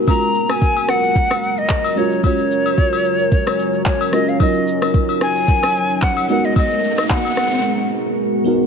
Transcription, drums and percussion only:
0.07 kick loud
0.07 high agogo medium
0.07 shaker medium
0.22 shaker medium
0.35 shaker loud
0.49 cross-stick medium
0.49 high agogo medium
0.49 shaker soft
0.62 kick loud
0.62 shaker medium
0.77 high agogo medium
0.77 shaker medium
0.89 cross-stick medium
0.89 shaker medium
1.03 shaker medium
1.15 kick loud
1.15 shaker medium
1.30 cross-stick medium
1.30 high agogo medium
1.30 shaker soft
1.43 shaker medium
1.58 shaker soft
1.69 kick medium
1.69 clap medium
1.69 shaker medium
1.84 high agogo medium
1.84 shaker medium
1.96 shaker medium
2.12 shaker medium
2.24 kick loud
2.24 high agogo medium
2.24 shaker medium
2.38 shaker medium
2.51 shaker loud
2.65 high agogo medium
2.65 shaker medium
2.78 kick loud
2.78 shaker medium
2.93 high agogo medium
2.93 shaker medium
3.05 shaker medium
3.20 shaker medium
3.32 kick loud
3.32 shaker medium
3.47 cross-stick medium
3.47 high agogo medium
3.47 shaker soft
3.59 shaker medium
3.74 shaker soft
3.86 kick medium
3.86 clap medium
3.86 shaker medium
4.00 high agogo medium
4.00 shaker medium
4.13 cross-stick medium
4.13 shaker medium
4.28 shaker medium
4.40 kick loud
4.40 high agogo medium
4.40 shaker medium
4.54 shaker medium
4.68 shaker loud
4.82 cross-stick medium
4.82 high agogo medium
4.82 shaker soft
4.94 kick loud
4.94 shaker medium
5.09 high agogo medium
5.09 shaker medium
5.21 cross-stick medium
5.21 shaker medium
5.36 shaker medium
5.48 kick loud
5.48 shaker medium
5.63 cross-stick medium
5.63 high agogo medium
5.63 shaker soft
5.76 shaker medium
5.90 shaker soft
6.02 kick medium
6.02 clap medium
6.02 shaker medium
6.17 high agogo medium
6.17 shaker medium
6.29 shaker medium
6.45 shaker medium
6.56 kick loud
6.56 high agogo medium
6.56 shaker medium
6.71 shaker medium
6.84 shaker loud
6.98 cross-stick medium
6.98 high agogo medium
6.98 shaker soft
7.10 kick medium
7.10 clap medium
7.10 low woodblock medium
7.10 shaker medium
7.25 high agogo medium
7.25 shaker medium
7.37 cross-stick medium
7.37 shaker medium
7.52 shaker medium

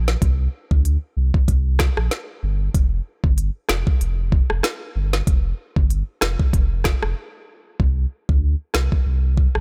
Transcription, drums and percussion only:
0.08 snare medium
0.22 kick loud
0.22 closed hi-hat medium
0.71 kick loud
0.85 closed hi-hat medium
1.34 kick medium
1.48 kick medium
1.48 closed hi-hat medium
1.79 kick loud
1.79 cross-stick loud
1.79 snare loud
1.97 cross-stick loud
2.11 snare medium
2.11 closed hi-hat medium
2.74 kick loud
2.74 closed hi-hat medium
3.24 kick loud
3.38 closed hi-hat medium
3.69 cross-stick medium
3.69 snare loud
3.87 kick loud
4.01 closed hi-hat medium
4.32 kick loud
4.50 cross-stick medium
4.63 cross-stick medium
4.63 snare loud
4.63 closed hi-hat medium
5.13 snare medium
5.27 kick loud
5.27 closed hi-hat medium
5.76 kick loud
5.90 closed hi-hat medium
6.21 cross-stick medium
6.21 snare loud
6.40 kick medium
6.53 kick loud
6.53 closed hi-hat medium
6.84 kick loud
6.84 cross-stick medium
6.84 snare loud
7.03 cross-stick loud
7.80 kick loud
8.29 kick medium
8.74 cross-stick medium
8.74 snare loud
8.92 kick medium
9.37 kick loud
9.55 cross-stick medium

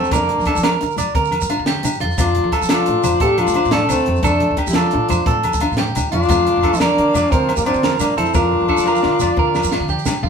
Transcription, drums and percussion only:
0.04 shekere soft
0.11 kick medium
0.11 closed hi-hat medium
0.11 high conga medium
0.11 low conga soft
0.11 low agogo medium
0.11 shekere medium
0.28 closed hi-hat soft
0.28 low conga medium
0.40 shekere soft
0.45 kick medium
0.45 snare soft
0.45 closed hi-hat soft
0.45 low agogo medium
0.55 high conga medium
0.55 shekere medium
0.63 snare medium
0.63 closed hi-hat medium
0.63 low conga medium
0.63 low agogo medium
0.80 closed hi-hat soft
0.80 low conga soft
0.80 shekere soft
0.89 low conga soft
0.89 shekere soft
0.96 closed hi-hat soft
0.96 high conga medium
0.96 low agogo medium
0.96 shekere medium
1.05 low conga soft
1.14 kick medium
1.14 closed hi-hat medium
1.14 low conga soft
1.23 low conga soft
1.23 shekere soft
1.31 closed hi-hat soft
1.31 low conga medium
1.31 low agogo medium
1.40 low conga soft
1.40 shekere medium
1.49 closed hi-hat soft
1.49 low agogo medium
1.66 snare medium
1.66 closed hi-hat medium
1.66 low conga medium
1.83 closed hi-hat soft
1.83 high conga medium
1.83 low agogo medium
1.83 shekere medium
1.93 shekere soft
2.00 closed hi-hat soft
2.00 low conga medium
2.10 low conga soft
2.10 shekere soft
2.18 kick medium
2.18 closed hi-hat medium
2.18 high conga medium
2.18 low agogo medium
2.18 shekere medium
2.27 low conga soft
2.35 closed hi-hat soft
2.35 low conga medium
2.52 kick medium
2.52 snare soft
2.52 closed hi-hat soft
2.52 low agogo medium
2.61 high conga medium
2.61 shekere medium
2.69 snare medium
2.69 closed hi-hat medium
2.69 low conga medium
2.69 low agogo medium
2.86 closed hi-hat soft
3.04 closed hi-hat soft
3.04 high conga medium
3.04 low conga medium
3.04 low agogo medium
3.04 shekere medium
3.12 low conga soft
3.20 kick medium
3.20 closed hi-hat medium
3.20 low conga soft
3.20 shekere soft
3.38 closed hi-hat soft
3.38 low conga medium
3.38 low agogo medium
3.47 high conga medium
3.47 shekere medium
3.54 closed hi-hat soft
3.54 low agogo medium
3.65 shekere soft
3.71 snare medium
3.71 closed hi-hat medium
3.71 low conga medium
3.89 closed hi-hat soft
3.89 high conga medium
3.89 low agogo medium
3.89 shekere medium
4.06 closed hi-hat soft
4.06 low conga medium
4.16 shekere soft
4.23 kick medium
4.23 closed hi-hat medium
4.23 high conga medium
4.23 low agogo medium
4.23 shekere medium
4.33 low conga soft
4.40 closed hi-hat soft
4.40 low conga medium
4.57 kick medium
4.57 closed hi-hat soft
4.57 low agogo medium
4.67 high conga medium
4.67 shekere medium
4.73 snare medium
4.73 closed hi-hat medium
4.73 low conga medium
4.73 low agogo medium
4.91 closed hi-hat soft
5.08 closed hi-hat medium
5.08 high conga medium
5.08 low conga medium
5.08 low agogo medium
5.08 shekere medium
5.26 kick medium
5.26 closed hi-hat medium
5.26 low conga soft
5.26 shekere soft
5.43 closed hi-hat medium
5.43 low conga loud
5.43 low agogo medium
5.53 high conga medium
5.53 shekere medium
5.60 closed hi-hat medium
5.60 low agogo medium
5.72 shekere soft
5.77 snare medium
5.77 closed hi-hat medium
5.77 low conga medium
5.95 closed hi-hat medium
5.95 high conga medium
5.95 low agogo medium
5.95 shekere medium
6.12 closed hi-hat soft
6.12 low conga loud
6.23 shekere soft
6.29 kick medium
6.29 closed hi-hat medium
6.29 high conga loud
6.29 low agogo medium
6.29 shekere medium
6.47 closed hi-hat soft
6.47 low conga medium
6.63 kick medium
6.63 closed hi-hat soft
6.63 low agogo medium
6.73 high conga medium
6.73 shekere medium
6.80 snare medium
6.80 closed hi-hat medium
6.80 low conga medium
6.80 low agogo medium
6.98 closed hi-hat soft
7.14 closed hi-hat soft
7.14 high conga medium
7.14 low conga medium
7.14 low agogo medium
7.14 shekere medium
7.24 low conga soft
7.32 kick medium
7.32 closed hi-hat medium
7.32 low conga soft
7.32 shekere soft
7.49 closed hi-hat soft
7.49 low conga medium
7.49 low agogo medium
7.56 high conga medium
7.56 shekere medium
7.66 closed hi-hat soft
7.66 low agogo medium
7.74 shekere soft
7.83 snare medium
7.83 closed hi-hat medium
7.83 low conga medium
7.99 closed hi-hat soft
7.99 high conga medium
7.99 low agogo medium
7.99 shekere medium
8.18 closed hi-hat soft
8.18 low conga medium
8.25 shekere soft
8.34 kick medium
8.34 high conga medium
8.34 low conga soft
8.34 low agogo medium
8.34 shekere medium
8.52 low conga medium
8.69 kick soft
8.69 low conga soft
8.69 low agogo medium
8.77 high conga medium
8.77 shekere medium
8.86 low conga medium
8.86 low agogo medium
8.95 low conga soft
8.95 shekere soft
9.03 snare soft
9.13 low conga soft
9.19 high conga medium
9.19 low conga medium
9.19 low agogo medium
9.19 shekere medium
9.31 low conga soft
9.37 kick medium
9.55 snare medium
9.55 low conga medium
9.55 low agogo medium
9.55 shekere soft
9.63 high conga medium
9.63 shekere medium
9.72 snare medium
9.72 low agogo medium
9.88 kick medium
9.88 low conga medium
9.88 shekere soft
9.98 shekere soft
10.05 snare medium
10.05 high conga medium
10.05 low agogo medium
10.05 shekere loud
10.23 floor tom medium
10.23 low conga medium

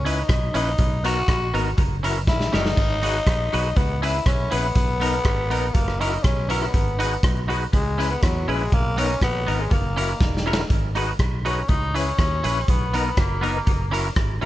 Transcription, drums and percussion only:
0.06 closed hi-hat loud
0.29 kick loud
0.29 cross-stick loud
0.29 closed hi-hat medium
0.55 closed hi-hat loud
0.78 kick loud
0.78 closed hi-hat medium
1.05 closed hi-hat medium
1.28 kick loud
1.28 cross-stick loud
1.28 closed hi-hat medium
1.55 closed hi-hat medium
1.78 kick loud
1.78 closed hi-hat medium
2.04 closed hi-hat loud
2.27 kick loud
2.27 snare medium
2.40 snare medium
2.54 snare medium
2.66 snare medium
2.77 kick loud
2.77 crash medium
3.03 closed hi-hat medium
3.27 kick loud
3.27 cross-stick loud
3.27 closed hi-hat medium
3.53 closed hi-hat medium
3.76 kick loud
3.76 closed hi-hat medium
4.03 closed hi-hat medium
4.26 kick loud
4.26 cross-stick loud
4.26 closed hi-hat medium
4.52 closed hi-hat medium
4.75 kick loud
4.75 closed hi-hat medium
5.01 closed hi-hat medium
5.25 kick loud
5.25 cross-stick loud
5.25 closed hi-hat medium
5.51 closed hi-hat medium
5.74 kick loud
5.74 closed hi-hat medium
5.88 cross-stick medium
6.01 closed hi-hat loud
6.24 kick loud
6.24 cross-stick loud
6.24 closed hi-hat medium
6.50 closed hi-hat loud
6.62 cross-stick medium
6.74 kick loud
6.74 closed hi-hat medium
7.00 closed hi-hat medium
7.23 kick loud
7.23 cross-stick loud
7.23 closed hi-hat medium
7.50 closed hi-hat medium
7.73 kick loud
7.73 closed hi-hat medium
8.00 closed hi-hat medium
8.23 kick loud
8.23 cross-stick loud
8.23 closed hi-hat medium
8.49 open hi-hat medium
8.72 kick loud
8.72 closed hi-hat medium
8.98 closed hi-hat medium
9.21 kick loud
9.21 cross-stick loud
9.21 closed hi-hat medium
9.48 closed hi-hat medium
9.71 kick loud
9.71 closed hi-hat medium
9.98 closed hi-hat medium
10.21 kick loud
10.21 snare medium
10.37 snare medium
10.53 snare loud
10.70 kick loud
10.70 closed hi-hat medium
10.95 closed hi-hat medium
11.19 kick loud
11.19 cross-stick loud
11.19 closed hi-hat medium
11.46 closed hi-hat medium
11.69 kick loud
11.69 closed hi-hat medium
11.95 closed hi-hat medium
12.18 kick loud
12.18 cross-stick loud
12.18 closed hi-hat medium
12.44 closed hi-hat medium
12.68 kick loud
12.68 closed hi-hat medium
12.94 closed hi-hat medium
13.17 kick loud
13.17 cross-stick loud
13.17 closed hi-hat medium
13.43 closed hi-hat medium
13.67 kick loud
13.67 closed hi-hat medium
13.94 closed hi-hat medium
14.16 kick loud
14.16 cross-stick loud
14.16 closed hi-hat medium
14.42 open hi-hat medium

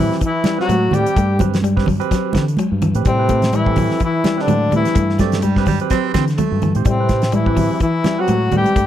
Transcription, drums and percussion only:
0.12 snare soft
0.21 kick medium
0.21 closed hi-hat medium
0.44 snare medium
0.44 closed hi-hat medium
0.44 high conga loud
0.60 snare soft
0.69 closed hi-hat medium
0.69 high conga medium
0.91 closed hi-hat medium
0.91 low conga medium
1.06 closed hi-hat medium
1.16 kick medium
1.16 closed hi-hat medium
1.39 kick medium
1.39 closed hi-hat medium
1.39 high conga medium
1.39 low conga medium
1.54 snare medium
1.54 closed hi-hat medium
1.62 closed hi-hat medium
1.62 high conga medium
1.77 kick medium
1.77 snare soft
1.86 kick medium
1.86 open hi-hat medium
1.86 low conga medium
2.01 closed hi-hat medium
2.11 kick medium
2.11 snare soft
2.11 closed hi-hat medium
2.33 kick medium
2.33 snare medium
2.33 closed hi-hat medium
2.33 high conga loud
2.48 closed hi-hat medium
2.57 closed hi-hat medium
2.57 high conga medium
2.82 closed hi-hat medium
2.82 low conga medium
2.95 closed hi-hat medium
3.05 kick medium
3.05 closed hi-hat medium
3.29 kick medium
3.29 closed hi-hat medium
3.29 high conga medium
3.42 snare medium
3.42 closed hi-hat soft
3.42 high conga medium
3.52 closed hi-hat medium
3.52 high conga medium
3.66 kick medium
3.76 kick medium
3.76 open hi-hat medium
3.76 low conga medium
3.91 snare soft
4.00 kick medium
4.00 closed hi-hat medium
4.24 snare medium
4.24 closed hi-hat soft
4.24 high conga loud
4.39 snare soft
4.48 closed hi-hat medium
4.48 high conga medium
4.48 low conga medium
4.72 closed hi-hat soft
4.72 low conga medium
4.85 snare soft
4.85 closed hi-hat medium
4.95 kick loud
4.95 closed hi-hat medium
5.09 snare soft
5.19 kick medium
5.19 snare soft
5.19 closed hi-hat medium
5.19 high conga medium
5.32 snare medium
5.32 closed hi-hat medium
5.42 closed hi-hat medium
5.42 high conga medium
5.56 kick medium
5.56 snare soft
5.66 kick medium
5.66 open hi-hat medium
5.66 low conga medium
5.80 closed hi-hat medium
5.90 kick medium
5.90 snare soft
5.90 closed hi-hat medium
6.14 kick medium
6.14 snare medium
6.14 closed hi-hat medium
6.14 high conga medium
6.28 snare soft
6.28 closed hi-hat medium
6.38 closed hi-hat medium
6.38 high conga medium
6.38 low conga medium
6.62 closed hi-hat medium
6.62 low conga medium
6.75 closed hi-hat soft
6.75 high conga medium
6.85 kick loud
6.85 closed hi-hat medium
7.09 kick medium
7.09 snare soft
7.09 closed hi-hat medium
7.09 high conga medium
7.22 snare medium
7.22 closed hi-hat soft
7.32 closed hi-hat medium
7.32 high conga medium
7.46 kick medium
7.57 kick medium
7.57 open hi-hat medium
7.57 low conga medium
7.80 kick medium
7.80 closed hi-hat medium
8.04 snare medium
8.04 closed hi-hat soft
8.04 high conga loud
8.28 closed hi-hat medium
8.28 high conga medium
8.52 closed hi-hat soft
8.52 low conga medium
8.64 closed hi-hat medium
8.64 high conga medium
8.76 kick loud
8.76 closed hi-hat medium

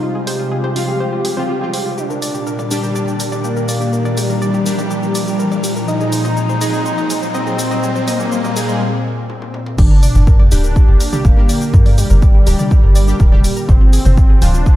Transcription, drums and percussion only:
0.27 open hi-hat loud
0.64 mid tom medium
0.76 open hi-hat medium
1.25 open hi-hat loud
1.37 mid tom medium
1.74 open hi-hat medium
1.98 shaker soft
2.10 shaker soft
2.22 open hi-hat loud
2.22 shaker medium
2.35 shaker soft
2.47 shaker soft
2.59 mid tom medium
2.59 shaker soft
2.71 open hi-hat medium
2.71 shaker medium
2.83 shaker soft
2.95 shaker soft
3.08 shaker soft
3.20 open hi-hat loud
3.20 shaker medium
3.32 mid tom medium
3.32 shaker soft
3.44 shaker soft
3.57 shaker soft
3.69 open hi-hat medium
3.69 shaker medium
3.81 shaker soft
3.93 shaker soft
4.05 mid tom medium
4.05 shaker soft
4.17 open hi-hat loud
4.17 shaker medium
4.30 shaker soft
4.42 shaker soft
4.54 shaker soft
4.66 open hi-hat medium
4.66 shaker medium
4.79 mid tom loud
4.79 shaker soft
4.91 shaker soft
5.03 shaker soft
5.15 open hi-hat loud
5.15 shaker medium
5.27 shaker soft
5.39 shaker soft
5.52 mid tom medium
5.52 shaker soft
5.64 open hi-hat medium
5.64 shaker medium
5.76 shaker soft
5.88 shaker soft
6.00 shaker soft
6.12 open hi-hat loud
6.12 shaker medium
6.25 mid tom medium
6.25 shaker soft
6.37 shaker soft
6.49 shaker soft
6.61 open hi-hat medium
6.61 shaker medium
6.74 shaker soft
6.86 shaker soft
6.98 mid tom loud
6.98 shaker soft
7.10 open hi-hat loud
7.10 shaker medium
7.22 shaker soft
7.35 shaker soft
7.47 shaker soft
7.59 open hi-hat medium
7.59 shaker medium
7.71 mid tom medium
7.71 shaker soft
7.83 shaker soft
7.96 shaker soft
8.08 open hi-hat loud
8.08 shaker medium
8.20 shaker soft
8.32 shaker soft
8.44 mid tom medium
8.44 shaker soft
8.56 open hi-hat medium
8.56 shaker medium
8.69 shaker soft
9.30 high tom medium
9.42 high tom medium
9.54 mid tom medium
9.66 mid tom medium
9.78 kick loud
9.78 crash loud
9.78 shaker soft
10.03 open hi-hat loud
10.03 shaker medium
10.15 shaker soft
10.27 kick loud
10.27 shaker soft
10.40 mid tom medium
10.52 open hi-hat loud
10.52 shaker medium
10.64 shaker soft
10.76 kick loud
10.76 shaker soft
11.00 open hi-hat loud
11.00 shaker medium
11.13 mid tom medium
11.13 shaker soft
11.25 kick loud
11.25 shaker soft
11.49 open hi-hat loud
11.49 shaker medium
11.61 shaker soft
11.74 kick loud
11.74 shaker soft
11.86 mid tom medium
11.86 open hi-hat medium
11.98 open hi-hat loud
11.98 shaker medium
12.10 shaker soft
12.22 kick loud
12.22 shaker soft
12.47 open hi-hat loud
12.47 shaker medium
12.59 mid tom medium
12.59 shaker soft
12.71 kick loud
12.71 shaker soft
12.96 open hi-hat loud
12.96 shaker medium
13.08 shaker soft
13.20 kick loud
13.20 shaker soft
13.32 mid tom medium
13.44 open hi-hat loud
13.44 shaker medium
13.57 shaker soft
13.69 kick loud
13.69 shaker soft
13.93 open hi-hat loud
13.93 shaker medium
14.05 mid tom medium
14.05 shaker soft
14.17 kick loud
14.17 shaker soft
14.42 open hi-hat loud
14.42 shaker medium
14.54 shaker soft
14.66 kick loud
14.66 shaker soft

